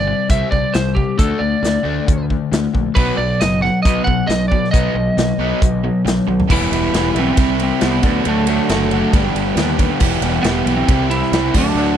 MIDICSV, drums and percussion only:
0, 0, Header, 1, 2, 480
1, 0, Start_track
1, 0, Key_signature, 1, "minor"
1, 0, Tempo, 443459
1, 1289, Time_signature, 4, 2, 24, 8
1, 6084, Tempo, 438596
1, 13033, End_track
2, 0, Start_track
2, 0, Title_t, "Drums"
2, 321, Note_on_c, 9, 36, 110
2, 321, Note_on_c, 9, 42, 78
2, 429, Note_off_c, 9, 36, 0
2, 430, Note_off_c, 9, 42, 0
2, 563, Note_on_c, 9, 36, 80
2, 671, Note_off_c, 9, 36, 0
2, 805, Note_on_c, 9, 42, 69
2, 813, Note_on_c, 9, 38, 115
2, 913, Note_off_c, 9, 42, 0
2, 921, Note_off_c, 9, 38, 0
2, 1045, Note_on_c, 9, 36, 77
2, 1153, Note_off_c, 9, 36, 0
2, 1288, Note_on_c, 9, 36, 116
2, 1290, Note_on_c, 9, 42, 66
2, 1396, Note_off_c, 9, 36, 0
2, 1398, Note_off_c, 9, 42, 0
2, 1780, Note_on_c, 9, 42, 63
2, 1789, Note_on_c, 9, 38, 100
2, 1888, Note_off_c, 9, 42, 0
2, 1897, Note_off_c, 9, 38, 0
2, 2254, Note_on_c, 9, 36, 114
2, 2255, Note_on_c, 9, 42, 72
2, 2362, Note_off_c, 9, 36, 0
2, 2363, Note_off_c, 9, 42, 0
2, 2493, Note_on_c, 9, 36, 74
2, 2601, Note_off_c, 9, 36, 0
2, 2738, Note_on_c, 9, 42, 66
2, 2746, Note_on_c, 9, 38, 110
2, 2846, Note_off_c, 9, 42, 0
2, 2855, Note_off_c, 9, 38, 0
2, 2972, Note_on_c, 9, 36, 77
2, 3081, Note_off_c, 9, 36, 0
2, 3209, Note_on_c, 9, 36, 116
2, 3210, Note_on_c, 9, 49, 92
2, 3318, Note_off_c, 9, 36, 0
2, 3319, Note_off_c, 9, 49, 0
2, 3690, Note_on_c, 9, 42, 72
2, 3698, Note_on_c, 9, 38, 110
2, 3798, Note_off_c, 9, 42, 0
2, 3806, Note_off_c, 9, 38, 0
2, 3945, Note_on_c, 9, 38, 31
2, 4053, Note_off_c, 9, 38, 0
2, 4171, Note_on_c, 9, 36, 115
2, 4174, Note_on_c, 9, 42, 80
2, 4279, Note_off_c, 9, 36, 0
2, 4283, Note_off_c, 9, 42, 0
2, 4408, Note_on_c, 9, 36, 85
2, 4516, Note_off_c, 9, 36, 0
2, 4651, Note_on_c, 9, 42, 76
2, 4660, Note_on_c, 9, 38, 103
2, 4759, Note_off_c, 9, 42, 0
2, 4768, Note_off_c, 9, 38, 0
2, 4888, Note_on_c, 9, 36, 78
2, 4996, Note_off_c, 9, 36, 0
2, 5029, Note_on_c, 9, 38, 32
2, 5128, Note_on_c, 9, 36, 116
2, 5137, Note_off_c, 9, 38, 0
2, 5137, Note_on_c, 9, 42, 76
2, 5236, Note_off_c, 9, 36, 0
2, 5245, Note_off_c, 9, 42, 0
2, 5607, Note_on_c, 9, 42, 68
2, 5616, Note_on_c, 9, 38, 111
2, 5716, Note_off_c, 9, 42, 0
2, 5724, Note_off_c, 9, 38, 0
2, 6084, Note_on_c, 9, 36, 114
2, 6094, Note_on_c, 9, 42, 77
2, 6193, Note_off_c, 9, 36, 0
2, 6204, Note_off_c, 9, 42, 0
2, 6576, Note_on_c, 9, 42, 67
2, 6585, Note_on_c, 9, 38, 119
2, 6686, Note_off_c, 9, 42, 0
2, 6695, Note_off_c, 9, 38, 0
2, 6811, Note_on_c, 9, 48, 64
2, 6921, Note_off_c, 9, 48, 0
2, 6933, Note_on_c, 9, 43, 91
2, 7042, Note_off_c, 9, 43, 0
2, 7046, Note_on_c, 9, 36, 113
2, 7049, Note_on_c, 9, 49, 126
2, 7156, Note_off_c, 9, 36, 0
2, 7159, Note_off_c, 9, 49, 0
2, 7294, Note_on_c, 9, 51, 80
2, 7403, Note_off_c, 9, 51, 0
2, 7530, Note_on_c, 9, 51, 105
2, 7538, Note_on_c, 9, 38, 114
2, 7639, Note_off_c, 9, 51, 0
2, 7648, Note_off_c, 9, 38, 0
2, 7766, Note_on_c, 9, 51, 72
2, 7876, Note_off_c, 9, 51, 0
2, 7998, Note_on_c, 9, 51, 113
2, 8004, Note_on_c, 9, 36, 123
2, 8107, Note_off_c, 9, 51, 0
2, 8113, Note_off_c, 9, 36, 0
2, 8245, Note_on_c, 9, 51, 85
2, 8354, Note_off_c, 9, 51, 0
2, 8480, Note_on_c, 9, 51, 106
2, 8488, Note_on_c, 9, 38, 118
2, 8589, Note_off_c, 9, 51, 0
2, 8598, Note_off_c, 9, 38, 0
2, 8719, Note_on_c, 9, 51, 77
2, 8723, Note_on_c, 9, 36, 103
2, 8828, Note_off_c, 9, 51, 0
2, 8833, Note_off_c, 9, 36, 0
2, 8963, Note_on_c, 9, 51, 107
2, 9072, Note_off_c, 9, 51, 0
2, 9199, Note_on_c, 9, 51, 81
2, 9308, Note_off_c, 9, 51, 0
2, 9447, Note_on_c, 9, 51, 104
2, 9456, Note_on_c, 9, 38, 106
2, 9557, Note_off_c, 9, 51, 0
2, 9566, Note_off_c, 9, 38, 0
2, 9685, Note_on_c, 9, 51, 67
2, 9795, Note_off_c, 9, 51, 0
2, 9929, Note_on_c, 9, 36, 125
2, 9929, Note_on_c, 9, 51, 101
2, 10038, Note_off_c, 9, 36, 0
2, 10038, Note_off_c, 9, 51, 0
2, 10174, Note_on_c, 9, 51, 77
2, 10284, Note_off_c, 9, 51, 0
2, 10405, Note_on_c, 9, 51, 103
2, 10414, Note_on_c, 9, 38, 116
2, 10514, Note_off_c, 9, 51, 0
2, 10523, Note_off_c, 9, 38, 0
2, 10648, Note_on_c, 9, 36, 93
2, 10649, Note_on_c, 9, 51, 77
2, 10757, Note_off_c, 9, 36, 0
2, 10758, Note_off_c, 9, 51, 0
2, 10878, Note_on_c, 9, 57, 101
2, 10885, Note_on_c, 9, 36, 112
2, 10987, Note_off_c, 9, 57, 0
2, 10995, Note_off_c, 9, 36, 0
2, 11118, Note_on_c, 9, 51, 82
2, 11228, Note_off_c, 9, 51, 0
2, 11361, Note_on_c, 9, 51, 103
2, 11369, Note_on_c, 9, 38, 109
2, 11470, Note_off_c, 9, 51, 0
2, 11479, Note_off_c, 9, 38, 0
2, 11609, Note_on_c, 9, 51, 77
2, 11718, Note_off_c, 9, 51, 0
2, 11845, Note_on_c, 9, 36, 124
2, 11845, Note_on_c, 9, 51, 114
2, 11954, Note_off_c, 9, 51, 0
2, 11955, Note_off_c, 9, 36, 0
2, 12091, Note_on_c, 9, 51, 89
2, 12201, Note_off_c, 9, 51, 0
2, 12221, Note_on_c, 9, 38, 32
2, 12331, Note_off_c, 9, 38, 0
2, 12332, Note_on_c, 9, 51, 107
2, 12341, Note_on_c, 9, 38, 110
2, 12442, Note_off_c, 9, 51, 0
2, 12450, Note_off_c, 9, 38, 0
2, 12566, Note_on_c, 9, 36, 109
2, 12567, Note_on_c, 9, 57, 104
2, 12676, Note_off_c, 9, 36, 0
2, 12676, Note_off_c, 9, 57, 0
2, 13033, End_track
0, 0, End_of_file